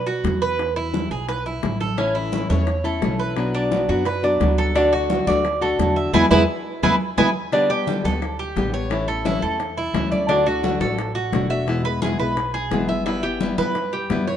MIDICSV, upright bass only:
0, 0, Header, 1, 2, 480
1, 0, Start_track
1, 0, Key_signature, 3, "major"
1, 0, Tempo, 346420
1, 823, Time_signature, 4, 2, 24, 8
1, 19908, End_track
2, 0, Start_track
2, 0, Title_t, "Upright bass"
2, 0, Program_c, 0, 32
2, 0, Note_on_c, 0, 47, 77
2, 284, Note_off_c, 0, 47, 0
2, 330, Note_on_c, 0, 40, 90
2, 1458, Note_off_c, 0, 40, 0
2, 1534, Note_on_c, 0, 35, 72
2, 2209, Note_off_c, 0, 35, 0
2, 2258, Note_on_c, 0, 33, 77
2, 3383, Note_off_c, 0, 33, 0
2, 3458, Note_on_c, 0, 40, 84
2, 4132, Note_off_c, 0, 40, 0
2, 4182, Note_on_c, 0, 35, 78
2, 5305, Note_off_c, 0, 35, 0
2, 5385, Note_on_c, 0, 42, 84
2, 6056, Note_off_c, 0, 42, 0
2, 6102, Note_on_c, 0, 38, 75
2, 7226, Note_off_c, 0, 38, 0
2, 7300, Note_on_c, 0, 38, 93
2, 7974, Note_off_c, 0, 38, 0
2, 8020, Note_on_c, 0, 40, 79
2, 8470, Note_off_c, 0, 40, 0
2, 8498, Note_on_c, 0, 40, 88
2, 8681, Note_off_c, 0, 40, 0
2, 8734, Note_on_c, 0, 40, 90
2, 8919, Note_off_c, 0, 40, 0
2, 9457, Note_on_c, 0, 40, 93
2, 9641, Note_off_c, 0, 40, 0
2, 9940, Note_on_c, 0, 40, 93
2, 10122, Note_off_c, 0, 40, 0
2, 11144, Note_on_c, 0, 38, 89
2, 11815, Note_off_c, 0, 38, 0
2, 11860, Note_on_c, 0, 33, 86
2, 12983, Note_off_c, 0, 33, 0
2, 13057, Note_on_c, 0, 40, 78
2, 13730, Note_off_c, 0, 40, 0
2, 13770, Note_on_c, 0, 38, 79
2, 14897, Note_off_c, 0, 38, 0
2, 14968, Note_on_c, 0, 33, 91
2, 15645, Note_off_c, 0, 33, 0
2, 15691, Note_on_c, 0, 28, 94
2, 16816, Note_off_c, 0, 28, 0
2, 16884, Note_on_c, 0, 35, 80
2, 17561, Note_off_c, 0, 35, 0
2, 17609, Note_on_c, 0, 31, 83
2, 18733, Note_off_c, 0, 31, 0
2, 18810, Note_on_c, 0, 43, 86
2, 19483, Note_off_c, 0, 43, 0
2, 19534, Note_on_c, 0, 42, 83
2, 19908, Note_off_c, 0, 42, 0
2, 19908, End_track
0, 0, End_of_file